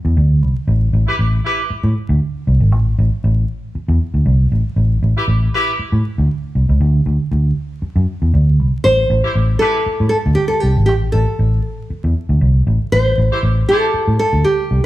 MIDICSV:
0, 0, Header, 1, 5, 480
1, 0, Start_track
1, 0, Key_signature, 0, "minor"
1, 0, Tempo, 509771
1, 644, Time_signature, 4, 2, 24, 8
1, 13990, End_track
2, 0, Start_track
2, 0, Title_t, "Nylon-string guitar"
2, 0, Program_c, 0, 24
2, 8323, Note_on_c, 0, 72, 118
2, 9027, Note_off_c, 0, 72, 0
2, 9031, Note_on_c, 0, 69, 97
2, 9491, Note_off_c, 0, 69, 0
2, 9502, Note_on_c, 0, 69, 85
2, 9570, Note_off_c, 0, 69, 0
2, 9744, Note_on_c, 0, 67, 93
2, 9863, Note_off_c, 0, 67, 0
2, 9866, Note_on_c, 0, 69, 81
2, 9982, Note_off_c, 0, 69, 0
2, 9982, Note_on_c, 0, 67, 79
2, 10213, Note_off_c, 0, 67, 0
2, 10224, Note_on_c, 0, 67, 91
2, 10292, Note_off_c, 0, 67, 0
2, 10472, Note_on_c, 0, 69, 87
2, 10925, Note_off_c, 0, 69, 0
2, 12167, Note_on_c, 0, 72, 111
2, 12882, Note_off_c, 0, 72, 0
2, 12886, Note_on_c, 0, 69, 92
2, 13353, Note_off_c, 0, 69, 0
2, 13364, Note_on_c, 0, 69, 92
2, 13600, Note_on_c, 0, 67, 103
2, 13613, Note_off_c, 0, 69, 0
2, 13982, Note_off_c, 0, 67, 0
2, 13990, End_track
3, 0, Start_track
3, 0, Title_t, "Horn section"
3, 0, Program_c, 1, 61
3, 1008, Note_on_c, 1, 71, 92
3, 1009, Note_on_c, 1, 64, 85
3, 1010, Note_on_c, 1, 67, 92
3, 1081, Note_off_c, 1, 71, 0
3, 1082, Note_off_c, 1, 64, 0
3, 1083, Note_off_c, 1, 67, 0
3, 1359, Note_on_c, 1, 67, 98
3, 1361, Note_on_c, 1, 64, 96
3, 1362, Note_on_c, 1, 71, 100
3, 1515, Note_off_c, 1, 67, 0
3, 1516, Note_off_c, 1, 64, 0
3, 1516, Note_off_c, 1, 71, 0
3, 4856, Note_on_c, 1, 67, 93
3, 4858, Note_on_c, 1, 64, 89
3, 4858, Note_on_c, 1, 71, 89
3, 4928, Note_off_c, 1, 67, 0
3, 4930, Note_off_c, 1, 64, 0
3, 4930, Note_off_c, 1, 71, 0
3, 5213, Note_on_c, 1, 67, 105
3, 5216, Note_on_c, 1, 71, 104
3, 5217, Note_on_c, 1, 64, 100
3, 5365, Note_off_c, 1, 67, 0
3, 5367, Note_off_c, 1, 71, 0
3, 5368, Note_off_c, 1, 64, 0
3, 8686, Note_on_c, 1, 64, 88
3, 8687, Note_on_c, 1, 67, 85
3, 8690, Note_on_c, 1, 72, 95
3, 8761, Note_off_c, 1, 64, 0
3, 8762, Note_off_c, 1, 67, 0
3, 8764, Note_off_c, 1, 72, 0
3, 9035, Note_on_c, 1, 71, 104
3, 9040, Note_on_c, 1, 64, 100
3, 9041, Note_on_c, 1, 67, 102
3, 9192, Note_off_c, 1, 71, 0
3, 9195, Note_off_c, 1, 64, 0
3, 9196, Note_off_c, 1, 67, 0
3, 12528, Note_on_c, 1, 67, 90
3, 12532, Note_on_c, 1, 72, 93
3, 12534, Note_on_c, 1, 64, 83
3, 12602, Note_off_c, 1, 67, 0
3, 12604, Note_off_c, 1, 72, 0
3, 12606, Note_off_c, 1, 64, 0
3, 12891, Note_on_c, 1, 64, 94
3, 12892, Note_on_c, 1, 72, 106
3, 12893, Note_on_c, 1, 67, 96
3, 13043, Note_off_c, 1, 64, 0
3, 13044, Note_off_c, 1, 67, 0
3, 13044, Note_off_c, 1, 72, 0
3, 13990, End_track
4, 0, Start_track
4, 0, Title_t, "Fingered electric bass"
4, 0, Program_c, 2, 33
4, 44, Note_on_c, 2, 40, 83
4, 134, Note_off_c, 2, 40, 0
4, 158, Note_on_c, 2, 38, 93
4, 397, Note_off_c, 2, 38, 0
4, 397, Note_on_c, 2, 36, 81
4, 499, Note_off_c, 2, 36, 0
4, 636, Note_on_c, 2, 33, 104
4, 826, Note_off_c, 2, 33, 0
4, 878, Note_on_c, 2, 33, 103
4, 980, Note_off_c, 2, 33, 0
4, 1121, Note_on_c, 2, 33, 88
4, 1310, Note_off_c, 2, 33, 0
4, 1729, Note_on_c, 2, 45, 99
4, 1819, Note_off_c, 2, 45, 0
4, 1969, Note_on_c, 2, 38, 99
4, 2059, Note_off_c, 2, 38, 0
4, 2329, Note_on_c, 2, 36, 88
4, 2428, Note_off_c, 2, 36, 0
4, 2451, Note_on_c, 2, 32, 85
4, 2560, Note_off_c, 2, 32, 0
4, 2560, Note_on_c, 2, 33, 109
4, 2750, Note_off_c, 2, 33, 0
4, 2811, Note_on_c, 2, 33, 102
4, 2909, Note_off_c, 2, 33, 0
4, 3050, Note_on_c, 2, 33, 88
4, 3237, Note_off_c, 2, 33, 0
4, 3658, Note_on_c, 2, 40, 99
4, 3745, Note_off_c, 2, 40, 0
4, 3897, Note_on_c, 2, 38, 80
4, 3985, Note_off_c, 2, 38, 0
4, 4008, Note_on_c, 2, 36, 89
4, 4196, Note_off_c, 2, 36, 0
4, 4254, Note_on_c, 2, 33, 79
4, 4351, Note_off_c, 2, 33, 0
4, 4485, Note_on_c, 2, 33, 94
4, 4674, Note_off_c, 2, 33, 0
4, 4731, Note_on_c, 2, 33, 90
4, 4830, Note_off_c, 2, 33, 0
4, 4969, Note_on_c, 2, 33, 93
4, 5156, Note_off_c, 2, 33, 0
4, 5579, Note_on_c, 2, 45, 97
4, 5666, Note_off_c, 2, 45, 0
4, 5822, Note_on_c, 2, 38, 91
4, 5908, Note_off_c, 2, 38, 0
4, 6170, Note_on_c, 2, 36, 78
4, 6269, Note_off_c, 2, 36, 0
4, 6300, Note_on_c, 2, 37, 82
4, 6386, Note_off_c, 2, 37, 0
4, 6407, Note_on_c, 2, 38, 107
4, 6595, Note_off_c, 2, 38, 0
4, 6647, Note_on_c, 2, 38, 92
4, 6747, Note_off_c, 2, 38, 0
4, 6888, Note_on_c, 2, 38, 85
4, 7075, Note_off_c, 2, 38, 0
4, 7492, Note_on_c, 2, 42, 93
4, 7581, Note_off_c, 2, 42, 0
4, 7738, Note_on_c, 2, 40, 78
4, 7825, Note_off_c, 2, 40, 0
4, 7850, Note_on_c, 2, 38, 93
4, 8090, Note_off_c, 2, 38, 0
4, 8090, Note_on_c, 2, 36, 85
4, 8188, Note_off_c, 2, 36, 0
4, 8331, Note_on_c, 2, 33, 97
4, 8516, Note_off_c, 2, 33, 0
4, 8568, Note_on_c, 2, 33, 108
4, 8667, Note_off_c, 2, 33, 0
4, 8809, Note_on_c, 2, 33, 94
4, 8995, Note_off_c, 2, 33, 0
4, 9418, Note_on_c, 2, 45, 101
4, 9504, Note_off_c, 2, 45, 0
4, 9659, Note_on_c, 2, 38, 91
4, 9745, Note_off_c, 2, 38, 0
4, 10013, Note_on_c, 2, 36, 87
4, 10109, Note_off_c, 2, 36, 0
4, 10136, Note_on_c, 2, 32, 89
4, 10247, Note_off_c, 2, 32, 0
4, 10247, Note_on_c, 2, 33, 105
4, 10434, Note_off_c, 2, 33, 0
4, 10488, Note_on_c, 2, 33, 108
4, 10586, Note_off_c, 2, 33, 0
4, 10726, Note_on_c, 2, 33, 96
4, 10913, Note_off_c, 2, 33, 0
4, 11336, Note_on_c, 2, 40, 87
4, 11423, Note_off_c, 2, 40, 0
4, 11573, Note_on_c, 2, 38, 86
4, 11661, Note_off_c, 2, 38, 0
4, 11686, Note_on_c, 2, 36, 92
4, 11873, Note_off_c, 2, 36, 0
4, 11928, Note_on_c, 2, 33, 93
4, 12026, Note_off_c, 2, 33, 0
4, 12168, Note_on_c, 2, 33, 102
4, 12354, Note_off_c, 2, 33, 0
4, 12410, Note_on_c, 2, 33, 104
4, 12507, Note_off_c, 2, 33, 0
4, 12646, Note_on_c, 2, 33, 86
4, 12833, Note_off_c, 2, 33, 0
4, 13253, Note_on_c, 2, 45, 91
4, 13341, Note_off_c, 2, 45, 0
4, 13491, Note_on_c, 2, 38, 90
4, 13580, Note_off_c, 2, 38, 0
4, 13849, Note_on_c, 2, 36, 74
4, 13948, Note_off_c, 2, 36, 0
4, 13990, End_track
5, 0, Start_track
5, 0, Title_t, "Muted fingered electric bass strokes"
5, 1604, Note_on_c, 9, 29, 48
5, 1698, Note_off_c, 9, 29, 0
5, 3533, Note_on_c, 9, 29, 48
5, 3627, Note_off_c, 9, 29, 0
5, 5456, Note_on_c, 9, 29, 49
5, 5550, Note_off_c, 9, 29, 0
5, 7365, Note_on_c, 9, 29, 55
5, 7459, Note_off_c, 9, 29, 0
5, 9288, Note_on_c, 9, 29, 48
5, 9382, Note_off_c, 9, 29, 0
5, 11208, Note_on_c, 9, 29, 49
5, 11302, Note_off_c, 9, 29, 0
5, 13126, Note_on_c, 9, 29, 53
5, 13220, Note_off_c, 9, 29, 0
5, 13990, End_track
0, 0, End_of_file